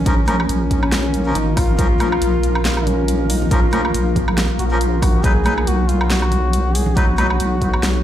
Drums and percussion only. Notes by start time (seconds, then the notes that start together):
0.06 kick, closed hi-hat
0.27 closed hi-hat, high conga, low woodblock
0.40 low woodblock
0.49 closed hi-hat
0.71 kick, closed hi-hat
0.83 low woodblock
0.92 snare, closed hi-hat
1.14 closed hi-hat
1.35 closed hi-hat
1.57 kick, open hi-hat, low woodblock
1.79 kick, closed hi-hat
2.00 closed hi-hat, high conga, low woodblock
2.12 low woodblock
2.22 closed hi-hat
2.43 closed hi-hat
2.55 low woodblock
2.65 snare, closed hi-hat
2.77 low woodblock
2.87 closed hi-hat, low conga
3.08 closed hi-hat
3.30 open hi-hat
3.42 low conga
3.51 kick, closed hi-hat
3.73 closed hi-hat, high conga, low woodblock
3.85 low woodblock
3.94 closed hi-hat
4.16 kick, closed hi-hat, low conga
4.28 low woodblock
4.38 snare, closed hi-hat
4.59 closed hi-hat
4.81 closed hi-hat
5.02 kick, open hi-hat, low woodblock
5.24 kick, closed hi-hat
5.45 closed hi-hat, high conga, low woodblock
5.58 low woodblock
5.67 closed hi-hat
5.89 closed hi-hat
6.01 low woodblock
6.10 snare, closed hi-hat
6.22 low woodblock
6.31 closed hi-hat, low conga
6.53 closed hi-hat
6.75 open hi-hat
6.86 low conga
6.96 kick, closed hi-hat
7.18 closed hi-hat, high conga, low woodblock
7.30 low woodblock
7.40 closed hi-hat
7.61 kick, closed hi-hat
7.74 low woodblock
7.83 snare, closed hi-hat